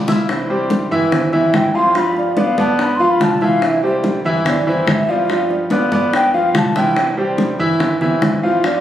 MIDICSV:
0, 0, Header, 1, 7, 480
1, 0, Start_track
1, 0, Key_signature, 0, "major"
1, 0, Tempo, 417537
1, 330, Time_signature, 4, 2, 24, 8
1, 10122, End_track
2, 0, Start_track
2, 0, Title_t, "Ocarina"
2, 0, Program_c, 0, 79
2, 1065, Note_on_c, 0, 71, 73
2, 1314, Note_on_c, 0, 72, 70
2, 1331, Note_off_c, 0, 71, 0
2, 1537, Note_on_c, 0, 76, 83
2, 1555, Note_off_c, 0, 72, 0
2, 1788, Note_on_c, 0, 79, 81
2, 1805, Note_off_c, 0, 76, 0
2, 2013, Note_on_c, 0, 84, 103
2, 2030, Note_off_c, 0, 79, 0
2, 2270, Note_on_c, 0, 83, 87
2, 2288, Note_off_c, 0, 84, 0
2, 2499, Note_off_c, 0, 83, 0
2, 2504, Note_on_c, 0, 74, 48
2, 2759, Note_on_c, 0, 77, 77
2, 2776, Note_off_c, 0, 74, 0
2, 2974, Note_off_c, 0, 77, 0
2, 2981, Note_on_c, 0, 81, 77
2, 3237, Note_on_c, 0, 83, 82
2, 3254, Note_off_c, 0, 81, 0
2, 3400, Note_on_c, 0, 84, 94
2, 3417, Note_off_c, 0, 83, 0
2, 3561, Note_on_c, 0, 83, 85
2, 3578, Note_off_c, 0, 84, 0
2, 3723, Note_on_c, 0, 81, 85
2, 3740, Note_off_c, 0, 83, 0
2, 3936, Note_off_c, 0, 81, 0
2, 3943, Note_on_c, 0, 77, 92
2, 4200, Note_on_c, 0, 76, 80
2, 4217, Note_off_c, 0, 77, 0
2, 4414, Note_off_c, 0, 76, 0
2, 4421, Note_on_c, 0, 72, 81
2, 4561, Note_off_c, 0, 72, 0
2, 5156, Note_on_c, 0, 74, 75
2, 5367, Note_off_c, 0, 74, 0
2, 5378, Note_on_c, 0, 72, 79
2, 5645, Note_on_c, 0, 76, 89
2, 5663, Note_off_c, 0, 72, 0
2, 5869, Note_on_c, 0, 74, 80
2, 5886, Note_off_c, 0, 76, 0
2, 6339, Note_off_c, 0, 74, 0
2, 7077, Note_on_c, 0, 79, 90
2, 7288, Note_off_c, 0, 79, 0
2, 7293, Note_on_c, 0, 77, 83
2, 7561, Note_on_c, 0, 81, 89
2, 7578, Note_off_c, 0, 77, 0
2, 7781, Note_off_c, 0, 81, 0
2, 7788, Note_on_c, 0, 79, 96
2, 8226, Note_off_c, 0, 79, 0
2, 9958, Note_on_c, 0, 74, 77
2, 10122, Note_off_c, 0, 74, 0
2, 10122, End_track
3, 0, Start_track
3, 0, Title_t, "Grand piano"
3, 0, Program_c, 1, 0
3, 92, Note_on_c, 1, 64, 70
3, 95, Note_on_c, 1, 76, 67
3, 98, Note_on_c, 1, 88, 73
3, 288, Note_off_c, 1, 64, 0
3, 289, Note_off_c, 1, 76, 0
3, 292, Note_off_c, 1, 88, 0
3, 573, Note_on_c, 1, 55, 66
3, 576, Note_on_c, 1, 67, 73
3, 578, Note_on_c, 1, 72, 77
3, 965, Note_off_c, 1, 55, 0
3, 966, Note_off_c, 1, 67, 0
3, 968, Note_off_c, 1, 72, 0
3, 1048, Note_on_c, 1, 52, 86
3, 1052, Note_on_c, 1, 64, 88
3, 1055, Note_on_c, 1, 76, 96
3, 1441, Note_off_c, 1, 52, 0
3, 1444, Note_off_c, 1, 64, 0
3, 1446, Note_off_c, 1, 76, 0
3, 1524, Note_on_c, 1, 52, 82
3, 1527, Note_on_c, 1, 64, 81
3, 1530, Note_on_c, 1, 76, 85
3, 1919, Note_off_c, 1, 52, 0
3, 1921, Note_off_c, 1, 64, 0
3, 1923, Note_off_c, 1, 76, 0
3, 2006, Note_on_c, 1, 53, 78
3, 2010, Note_on_c, 1, 65, 87
3, 2013, Note_on_c, 1, 77, 82
3, 2204, Note_off_c, 1, 53, 0
3, 2206, Note_off_c, 1, 65, 0
3, 2208, Note_off_c, 1, 77, 0
3, 2244, Note_on_c, 1, 53, 72
3, 2249, Note_on_c, 1, 65, 74
3, 2252, Note_on_c, 1, 77, 73
3, 2639, Note_off_c, 1, 53, 0
3, 2642, Note_off_c, 1, 65, 0
3, 2644, Note_off_c, 1, 77, 0
3, 2728, Note_on_c, 1, 59, 76
3, 2731, Note_on_c, 1, 71, 73
3, 2734, Note_on_c, 1, 74, 73
3, 2925, Note_off_c, 1, 59, 0
3, 2927, Note_off_c, 1, 71, 0
3, 2929, Note_off_c, 1, 74, 0
3, 2966, Note_on_c, 1, 59, 85
3, 2967, Note_on_c, 1, 71, 78
3, 2974, Note_on_c, 1, 74, 80
3, 3360, Note_off_c, 1, 59, 0
3, 3361, Note_off_c, 1, 71, 0
3, 3365, Note_off_c, 1, 74, 0
3, 3446, Note_on_c, 1, 53, 79
3, 3449, Note_on_c, 1, 65, 86
3, 3453, Note_on_c, 1, 77, 82
3, 3841, Note_off_c, 1, 53, 0
3, 3842, Note_off_c, 1, 65, 0
3, 3845, Note_off_c, 1, 77, 0
3, 3924, Note_on_c, 1, 52, 84
3, 3927, Note_on_c, 1, 64, 84
3, 3930, Note_on_c, 1, 76, 78
3, 4319, Note_off_c, 1, 52, 0
3, 4321, Note_off_c, 1, 64, 0
3, 4323, Note_off_c, 1, 76, 0
3, 4406, Note_on_c, 1, 55, 69
3, 4410, Note_on_c, 1, 67, 75
3, 4412, Note_on_c, 1, 72, 68
3, 4800, Note_off_c, 1, 55, 0
3, 4803, Note_off_c, 1, 67, 0
3, 4804, Note_off_c, 1, 72, 0
3, 4888, Note_on_c, 1, 52, 92
3, 4893, Note_on_c, 1, 64, 90
3, 4896, Note_on_c, 1, 76, 91
3, 5282, Note_off_c, 1, 52, 0
3, 5285, Note_off_c, 1, 64, 0
3, 5287, Note_off_c, 1, 76, 0
3, 5367, Note_on_c, 1, 52, 84
3, 5372, Note_on_c, 1, 64, 81
3, 5375, Note_on_c, 1, 76, 71
3, 5761, Note_off_c, 1, 52, 0
3, 5764, Note_off_c, 1, 64, 0
3, 5766, Note_off_c, 1, 76, 0
3, 5843, Note_on_c, 1, 53, 86
3, 5846, Note_on_c, 1, 65, 79
3, 5849, Note_on_c, 1, 77, 79
3, 6042, Note_off_c, 1, 53, 0
3, 6044, Note_off_c, 1, 65, 0
3, 6046, Note_off_c, 1, 77, 0
3, 6086, Note_on_c, 1, 53, 75
3, 6087, Note_on_c, 1, 65, 69
3, 6094, Note_on_c, 1, 77, 65
3, 6481, Note_off_c, 1, 53, 0
3, 6482, Note_off_c, 1, 65, 0
3, 6486, Note_off_c, 1, 77, 0
3, 6567, Note_on_c, 1, 59, 73
3, 6569, Note_on_c, 1, 71, 76
3, 6575, Note_on_c, 1, 74, 77
3, 6765, Note_off_c, 1, 59, 0
3, 6766, Note_off_c, 1, 71, 0
3, 6770, Note_off_c, 1, 74, 0
3, 6810, Note_on_c, 1, 59, 74
3, 6814, Note_on_c, 1, 71, 84
3, 6816, Note_on_c, 1, 74, 81
3, 7204, Note_off_c, 1, 59, 0
3, 7206, Note_off_c, 1, 71, 0
3, 7207, Note_off_c, 1, 74, 0
3, 7286, Note_on_c, 1, 53, 76
3, 7289, Note_on_c, 1, 65, 68
3, 7293, Note_on_c, 1, 77, 72
3, 7681, Note_off_c, 1, 53, 0
3, 7683, Note_off_c, 1, 65, 0
3, 7686, Note_off_c, 1, 77, 0
3, 7768, Note_on_c, 1, 52, 80
3, 7772, Note_on_c, 1, 64, 79
3, 7774, Note_on_c, 1, 76, 70
3, 8162, Note_off_c, 1, 52, 0
3, 8165, Note_off_c, 1, 64, 0
3, 8166, Note_off_c, 1, 76, 0
3, 8246, Note_on_c, 1, 55, 75
3, 8249, Note_on_c, 1, 67, 78
3, 8253, Note_on_c, 1, 72, 75
3, 8641, Note_off_c, 1, 55, 0
3, 8643, Note_off_c, 1, 67, 0
3, 8646, Note_off_c, 1, 72, 0
3, 8729, Note_on_c, 1, 52, 84
3, 8732, Note_on_c, 1, 64, 100
3, 8736, Note_on_c, 1, 76, 92
3, 9123, Note_off_c, 1, 52, 0
3, 9125, Note_off_c, 1, 64, 0
3, 9127, Note_off_c, 1, 76, 0
3, 9209, Note_on_c, 1, 52, 85
3, 9212, Note_on_c, 1, 64, 74
3, 9216, Note_on_c, 1, 76, 71
3, 9603, Note_off_c, 1, 52, 0
3, 9605, Note_off_c, 1, 64, 0
3, 9607, Note_off_c, 1, 76, 0
3, 9691, Note_on_c, 1, 53, 78
3, 9694, Note_on_c, 1, 65, 81
3, 9697, Note_on_c, 1, 77, 85
3, 9887, Note_off_c, 1, 53, 0
3, 9889, Note_off_c, 1, 65, 0
3, 9891, Note_off_c, 1, 77, 0
3, 9930, Note_on_c, 1, 53, 69
3, 9933, Note_on_c, 1, 65, 77
3, 9935, Note_on_c, 1, 77, 74
3, 10122, Note_off_c, 1, 53, 0
3, 10122, Note_off_c, 1, 65, 0
3, 10122, Note_off_c, 1, 77, 0
3, 10122, End_track
4, 0, Start_track
4, 0, Title_t, "Steel-string acoustic guitar"
4, 0, Program_c, 2, 25
4, 90, Note_on_c, 2, 65, 48
4, 109, Note_on_c, 2, 59, 43
4, 320, Note_off_c, 2, 65, 0
4, 322, Note_on_c, 2, 48, 61
4, 330, Note_off_c, 2, 59, 0
4, 331, Note_on_c, 2, 52, 69
4, 336, Note_on_c, 2, 55, 63
4, 339, Note_on_c, 2, 60, 68
4, 343, Note_on_c, 2, 64, 79
4, 790, Note_off_c, 2, 52, 0
4, 794, Note_off_c, 2, 55, 0
4, 796, Note_off_c, 2, 48, 0
4, 798, Note_off_c, 2, 60, 0
4, 804, Note_on_c, 2, 52, 43
4, 806, Note_off_c, 2, 64, 0
4, 808, Note_on_c, 2, 55, 37
4, 812, Note_on_c, 2, 60, 42
4, 820, Note_on_c, 2, 64, 40
4, 1270, Note_off_c, 2, 52, 0
4, 1273, Note_off_c, 2, 55, 0
4, 1275, Note_off_c, 2, 60, 0
4, 1279, Note_off_c, 2, 64, 0
4, 1520, Note_on_c, 2, 64, 70
4, 1531, Note_on_c, 2, 60, 67
4, 1533, Note_on_c, 2, 55, 63
4, 1537, Note_on_c, 2, 52, 50
4, 1746, Note_off_c, 2, 52, 0
4, 1754, Note_off_c, 2, 55, 0
4, 1755, Note_off_c, 2, 64, 0
4, 1760, Note_off_c, 2, 60, 0
4, 1760, Note_on_c, 2, 52, 49
4, 1768, Note_on_c, 2, 55, 53
4, 1773, Note_on_c, 2, 60, 50
4, 1781, Note_on_c, 2, 64, 60
4, 1983, Note_off_c, 2, 64, 0
4, 1994, Note_off_c, 2, 52, 0
4, 1994, Note_off_c, 2, 60, 0
4, 1997, Note_on_c, 2, 64, 75
4, 1998, Note_off_c, 2, 55, 0
4, 2008, Note_on_c, 2, 60, 67
4, 2012, Note_on_c, 2, 55, 60
4, 2017, Note_on_c, 2, 52, 54
4, 2219, Note_off_c, 2, 55, 0
4, 2233, Note_off_c, 2, 64, 0
4, 2233, Note_on_c, 2, 55, 72
4, 2238, Note_off_c, 2, 60, 0
4, 2242, Note_on_c, 2, 59, 62
4, 2243, Note_off_c, 2, 52, 0
4, 2251, Note_on_c, 2, 65, 71
4, 2702, Note_off_c, 2, 55, 0
4, 2712, Note_off_c, 2, 59, 0
4, 2716, Note_on_c, 2, 55, 44
4, 2720, Note_off_c, 2, 65, 0
4, 2726, Note_on_c, 2, 59, 36
4, 2734, Note_on_c, 2, 65, 47
4, 3186, Note_off_c, 2, 55, 0
4, 3188, Note_off_c, 2, 59, 0
4, 3196, Note_off_c, 2, 65, 0
4, 3435, Note_on_c, 2, 65, 76
4, 3451, Note_on_c, 2, 59, 59
4, 3672, Note_off_c, 2, 65, 0
4, 3674, Note_off_c, 2, 59, 0
4, 3677, Note_on_c, 2, 55, 52
4, 3688, Note_on_c, 2, 59, 53
4, 3695, Note_on_c, 2, 65, 52
4, 3906, Note_off_c, 2, 65, 0
4, 3913, Note_off_c, 2, 55, 0
4, 3919, Note_off_c, 2, 59, 0
4, 3920, Note_on_c, 2, 65, 79
4, 3939, Note_on_c, 2, 59, 56
4, 4154, Note_off_c, 2, 65, 0
4, 4164, Note_off_c, 2, 59, 0
4, 4167, Note_on_c, 2, 48, 61
4, 4167, Note_on_c, 2, 52, 76
4, 4177, Note_on_c, 2, 55, 72
4, 4178, Note_on_c, 2, 60, 65
4, 4183, Note_on_c, 2, 64, 84
4, 4627, Note_off_c, 2, 52, 0
4, 4635, Note_off_c, 2, 55, 0
4, 4638, Note_off_c, 2, 48, 0
4, 4640, Note_off_c, 2, 60, 0
4, 4641, Note_on_c, 2, 52, 41
4, 4646, Note_off_c, 2, 64, 0
4, 4648, Note_on_c, 2, 55, 39
4, 4653, Note_on_c, 2, 60, 46
4, 4661, Note_on_c, 2, 64, 44
4, 5115, Note_off_c, 2, 52, 0
4, 5119, Note_off_c, 2, 55, 0
4, 5121, Note_off_c, 2, 60, 0
4, 5125, Note_off_c, 2, 64, 0
4, 5362, Note_on_c, 2, 64, 66
4, 5373, Note_on_c, 2, 60, 55
4, 5378, Note_on_c, 2, 55, 61
4, 5383, Note_on_c, 2, 52, 59
4, 5589, Note_off_c, 2, 52, 0
4, 5595, Note_off_c, 2, 55, 0
4, 5596, Note_off_c, 2, 64, 0
4, 5601, Note_off_c, 2, 60, 0
4, 5603, Note_on_c, 2, 52, 51
4, 5609, Note_on_c, 2, 55, 50
4, 5616, Note_on_c, 2, 60, 50
4, 5622, Note_on_c, 2, 64, 50
4, 5828, Note_off_c, 2, 64, 0
4, 5836, Note_off_c, 2, 52, 0
4, 5836, Note_off_c, 2, 60, 0
4, 5839, Note_off_c, 2, 55, 0
4, 5842, Note_on_c, 2, 64, 71
4, 5850, Note_on_c, 2, 60, 69
4, 5855, Note_on_c, 2, 55, 65
4, 5861, Note_on_c, 2, 52, 56
4, 6069, Note_off_c, 2, 55, 0
4, 6076, Note_off_c, 2, 64, 0
4, 6080, Note_off_c, 2, 60, 0
4, 6083, Note_on_c, 2, 55, 71
4, 6086, Note_off_c, 2, 52, 0
4, 6090, Note_on_c, 2, 59, 72
4, 6100, Note_on_c, 2, 65, 77
4, 6549, Note_off_c, 2, 55, 0
4, 6560, Note_off_c, 2, 59, 0
4, 6563, Note_on_c, 2, 55, 39
4, 6565, Note_off_c, 2, 65, 0
4, 6574, Note_on_c, 2, 59, 44
4, 6583, Note_on_c, 2, 65, 45
4, 7028, Note_off_c, 2, 55, 0
4, 7031, Note_off_c, 2, 59, 0
4, 7038, Note_off_c, 2, 65, 0
4, 7278, Note_on_c, 2, 65, 62
4, 7294, Note_on_c, 2, 59, 59
4, 7514, Note_off_c, 2, 59, 0
4, 7514, Note_off_c, 2, 65, 0
4, 7516, Note_on_c, 2, 55, 53
4, 7528, Note_on_c, 2, 59, 47
4, 7534, Note_on_c, 2, 65, 57
4, 7740, Note_off_c, 2, 65, 0
4, 7753, Note_off_c, 2, 55, 0
4, 7754, Note_on_c, 2, 65, 67
4, 7759, Note_off_c, 2, 59, 0
4, 7772, Note_on_c, 2, 59, 57
4, 7991, Note_on_c, 2, 48, 69
4, 7992, Note_off_c, 2, 65, 0
4, 8000, Note_on_c, 2, 52, 73
4, 8001, Note_off_c, 2, 59, 0
4, 8002, Note_on_c, 2, 55, 70
4, 8010, Note_on_c, 2, 60, 68
4, 8015, Note_on_c, 2, 64, 78
4, 8460, Note_off_c, 2, 52, 0
4, 8470, Note_off_c, 2, 55, 0
4, 8471, Note_off_c, 2, 48, 0
4, 8474, Note_on_c, 2, 52, 38
4, 8477, Note_off_c, 2, 60, 0
4, 8483, Note_off_c, 2, 64, 0
4, 8484, Note_on_c, 2, 55, 40
4, 8491, Note_on_c, 2, 60, 45
4, 8495, Note_on_c, 2, 64, 44
4, 8948, Note_off_c, 2, 52, 0
4, 8951, Note_off_c, 2, 55, 0
4, 8953, Note_off_c, 2, 60, 0
4, 8956, Note_off_c, 2, 64, 0
4, 9200, Note_on_c, 2, 64, 73
4, 9206, Note_on_c, 2, 60, 62
4, 9213, Note_on_c, 2, 55, 60
4, 9219, Note_on_c, 2, 52, 57
4, 9430, Note_off_c, 2, 52, 0
4, 9436, Note_off_c, 2, 55, 0
4, 9436, Note_off_c, 2, 64, 0
4, 9439, Note_off_c, 2, 60, 0
4, 9444, Note_on_c, 2, 52, 48
4, 9450, Note_on_c, 2, 55, 45
4, 9455, Note_on_c, 2, 60, 56
4, 9462, Note_on_c, 2, 64, 50
4, 9677, Note_off_c, 2, 52, 0
4, 9677, Note_off_c, 2, 64, 0
4, 9681, Note_off_c, 2, 55, 0
4, 9683, Note_off_c, 2, 60, 0
4, 9690, Note_on_c, 2, 64, 64
4, 9697, Note_on_c, 2, 60, 67
4, 9699, Note_on_c, 2, 55, 59
4, 9708, Note_on_c, 2, 52, 59
4, 9910, Note_off_c, 2, 55, 0
4, 9920, Note_off_c, 2, 64, 0
4, 9924, Note_off_c, 2, 60, 0
4, 9924, Note_on_c, 2, 55, 77
4, 9929, Note_off_c, 2, 52, 0
4, 9936, Note_on_c, 2, 59, 72
4, 9944, Note_on_c, 2, 65, 78
4, 10122, Note_off_c, 2, 55, 0
4, 10122, Note_off_c, 2, 59, 0
4, 10122, Note_off_c, 2, 65, 0
4, 10122, End_track
5, 0, Start_track
5, 0, Title_t, "Upright bass"
5, 0, Program_c, 3, 32
5, 0, Note_on_c, 3, 36, 84
5, 980, Note_off_c, 3, 36, 0
5, 1048, Note_on_c, 3, 43, 97
5, 1722, Note_off_c, 3, 43, 0
5, 1767, Note_on_c, 3, 43, 80
5, 2897, Note_off_c, 3, 43, 0
5, 2959, Note_on_c, 3, 43, 87
5, 3638, Note_off_c, 3, 43, 0
5, 3681, Note_on_c, 3, 36, 77
5, 4815, Note_off_c, 3, 36, 0
5, 4880, Note_on_c, 3, 43, 91
5, 5559, Note_off_c, 3, 43, 0
5, 5603, Note_on_c, 3, 43, 84
5, 6736, Note_off_c, 3, 43, 0
5, 6808, Note_on_c, 3, 43, 89
5, 7483, Note_off_c, 3, 43, 0
5, 7525, Note_on_c, 3, 36, 85
5, 8658, Note_off_c, 3, 36, 0
5, 8724, Note_on_c, 3, 43, 88
5, 9401, Note_off_c, 3, 43, 0
5, 9450, Note_on_c, 3, 43, 79
5, 10122, Note_off_c, 3, 43, 0
5, 10122, End_track
6, 0, Start_track
6, 0, Title_t, "Muted steel-string acoustic guitar strokes"
6, 1283, Note_on_c, 9, 29, 54
6, 1398, Note_off_c, 9, 29, 0
6, 3200, Note_on_c, 9, 29, 59
6, 3315, Note_off_c, 9, 29, 0
6, 5128, Note_on_c, 9, 29, 58
6, 5243, Note_off_c, 9, 29, 0
6, 7042, Note_on_c, 9, 29, 67
6, 7157, Note_off_c, 9, 29, 0
6, 8960, Note_on_c, 9, 29, 62
6, 9075, Note_off_c, 9, 29, 0
6, 10122, End_track
7, 0, Start_track
7, 0, Title_t, "Drums"
7, 91, Note_on_c, 9, 61, 85
7, 96, Note_on_c, 9, 73, 74
7, 98, Note_on_c, 9, 63, 80
7, 206, Note_off_c, 9, 61, 0
7, 211, Note_off_c, 9, 73, 0
7, 213, Note_off_c, 9, 63, 0
7, 335, Note_on_c, 9, 60, 69
7, 449, Note_off_c, 9, 60, 0
7, 574, Note_on_c, 9, 63, 29
7, 689, Note_off_c, 9, 63, 0
7, 807, Note_on_c, 9, 63, 88
7, 813, Note_on_c, 9, 60, 55
7, 922, Note_off_c, 9, 63, 0
7, 928, Note_off_c, 9, 60, 0
7, 1052, Note_on_c, 9, 63, 31
7, 1167, Note_off_c, 9, 63, 0
7, 1291, Note_on_c, 9, 60, 68
7, 1291, Note_on_c, 9, 63, 38
7, 1291, Note_on_c, 9, 64, 89
7, 1406, Note_off_c, 9, 60, 0
7, 1406, Note_off_c, 9, 63, 0
7, 1406, Note_off_c, 9, 64, 0
7, 1526, Note_on_c, 9, 63, 31
7, 1526, Note_on_c, 9, 64, 69
7, 1641, Note_off_c, 9, 63, 0
7, 1641, Note_off_c, 9, 64, 0
7, 1767, Note_on_c, 9, 63, 86
7, 1768, Note_on_c, 9, 60, 67
7, 1768, Note_on_c, 9, 61, 86
7, 1882, Note_off_c, 9, 63, 0
7, 1883, Note_off_c, 9, 60, 0
7, 1883, Note_off_c, 9, 61, 0
7, 2244, Note_on_c, 9, 60, 70
7, 2248, Note_on_c, 9, 63, 33
7, 2359, Note_off_c, 9, 60, 0
7, 2363, Note_off_c, 9, 63, 0
7, 2486, Note_on_c, 9, 63, 30
7, 2490, Note_on_c, 9, 60, 33
7, 2601, Note_off_c, 9, 63, 0
7, 2605, Note_off_c, 9, 60, 0
7, 2720, Note_on_c, 9, 63, 92
7, 2727, Note_on_c, 9, 60, 58
7, 2835, Note_off_c, 9, 63, 0
7, 2842, Note_off_c, 9, 60, 0
7, 2963, Note_on_c, 9, 63, 98
7, 3078, Note_off_c, 9, 63, 0
7, 3205, Note_on_c, 9, 63, 36
7, 3207, Note_on_c, 9, 60, 70
7, 3320, Note_off_c, 9, 63, 0
7, 3322, Note_off_c, 9, 60, 0
7, 3444, Note_on_c, 9, 63, 37
7, 3445, Note_on_c, 9, 60, 36
7, 3559, Note_off_c, 9, 63, 0
7, 3560, Note_off_c, 9, 60, 0
7, 3681, Note_on_c, 9, 63, 75
7, 3688, Note_on_c, 9, 60, 75
7, 3688, Note_on_c, 9, 61, 97
7, 3796, Note_off_c, 9, 63, 0
7, 3803, Note_off_c, 9, 60, 0
7, 3803, Note_off_c, 9, 61, 0
7, 3922, Note_on_c, 9, 63, 81
7, 3928, Note_on_c, 9, 60, 33
7, 4037, Note_off_c, 9, 63, 0
7, 4043, Note_off_c, 9, 60, 0
7, 4163, Note_on_c, 9, 60, 71
7, 4278, Note_off_c, 9, 60, 0
7, 4401, Note_on_c, 9, 63, 32
7, 4516, Note_off_c, 9, 63, 0
7, 4641, Note_on_c, 9, 63, 88
7, 4648, Note_on_c, 9, 60, 52
7, 4756, Note_off_c, 9, 63, 0
7, 4763, Note_off_c, 9, 60, 0
7, 4885, Note_on_c, 9, 63, 37
7, 4999, Note_off_c, 9, 63, 0
7, 5120, Note_on_c, 9, 63, 39
7, 5120, Note_on_c, 9, 64, 81
7, 5126, Note_on_c, 9, 60, 76
7, 5235, Note_off_c, 9, 63, 0
7, 5235, Note_off_c, 9, 64, 0
7, 5241, Note_off_c, 9, 60, 0
7, 5360, Note_on_c, 9, 63, 35
7, 5475, Note_off_c, 9, 63, 0
7, 5595, Note_on_c, 9, 63, 84
7, 5604, Note_on_c, 9, 60, 75
7, 5604, Note_on_c, 9, 61, 90
7, 5709, Note_off_c, 9, 63, 0
7, 5719, Note_off_c, 9, 60, 0
7, 5719, Note_off_c, 9, 61, 0
7, 6081, Note_on_c, 9, 63, 34
7, 6089, Note_on_c, 9, 60, 62
7, 6196, Note_off_c, 9, 63, 0
7, 6204, Note_off_c, 9, 60, 0
7, 6317, Note_on_c, 9, 63, 29
7, 6327, Note_on_c, 9, 60, 36
7, 6432, Note_off_c, 9, 63, 0
7, 6442, Note_off_c, 9, 60, 0
7, 6555, Note_on_c, 9, 63, 80
7, 6563, Note_on_c, 9, 60, 57
7, 6670, Note_off_c, 9, 63, 0
7, 6678, Note_off_c, 9, 60, 0
7, 6804, Note_on_c, 9, 63, 101
7, 6919, Note_off_c, 9, 63, 0
7, 7046, Note_on_c, 9, 63, 33
7, 7053, Note_on_c, 9, 60, 71
7, 7161, Note_off_c, 9, 63, 0
7, 7168, Note_off_c, 9, 60, 0
7, 7287, Note_on_c, 9, 63, 34
7, 7291, Note_on_c, 9, 60, 34
7, 7402, Note_off_c, 9, 63, 0
7, 7406, Note_off_c, 9, 60, 0
7, 7527, Note_on_c, 9, 63, 78
7, 7528, Note_on_c, 9, 60, 68
7, 7528, Note_on_c, 9, 61, 91
7, 7642, Note_off_c, 9, 63, 0
7, 7643, Note_off_c, 9, 60, 0
7, 7643, Note_off_c, 9, 61, 0
7, 7766, Note_on_c, 9, 63, 86
7, 7769, Note_on_c, 9, 60, 82
7, 7881, Note_off_c, 9, 63, 0
7, 7884, Note_off_c, 9, 60, 0
7, 8007, Note_on_c, 9, 60, 73
7, 8009, Note_on_c, 9, 63, 32
7, 8122, Note_off_c, 9, 60, 0
7, 8124, Note_off_c, 9, 63, 0
7, 8241, Note_on_c, 9, 63, 34
7, 8356, Note_off_c, 9, 63, 0
7, 8486, Note_on_c, 9, 63, 86
7, 8488, Note_on_c, 9, 60, 62
7, 8601, Note_off_c, 9, 63, 0
7, 8603, Note_off_c, 9, 60, 0
7, 8722, Note_on_c, 9, 63, 35
7, 8837, Note_off_c, 9, 63, 0
7, 8967, Note_on_c, 9, 63, 35
7, 8967, Note_on_c, 9, 64, 80
7, 8970, Note_on_c, 9, 60, 66
7, 9081, Note_off_c, 9, 63, 0
7, 9081, Note_off_c, 9, 64, 0
7, 9085, Note_off_c, 9, 60, 0
7, 9208, Note_on_c, 9, 63, 35
7, 9208, Note_on_c, 9, 64, 74
7, 9323, Note_off_c, 9, 63, 0
7, 9323, Note_off_c, 9, 64, 0
7, 9447, Note_on_c, 9, 63, 84
7, 9450, Note_on_c, 9, 60, 71
7, 9450, Note_on_c, 9, 61, 96
7, 9562, Note_off_c, 9, 63, 0
7, 9565, Note_off_c, 9, 60, 0
7, 9565, Note_off_c, 9, 61, 0
7, 9926, Note_on_c, 9, 63, 33
7, 9933, Note_on_c, 9, 60, 74
7, 10041, Note_off_c, 9, 63, 0
7, 10048, Note_off_c, 9, 60, 0
7, 10122, End_track
0, 0, End_of_file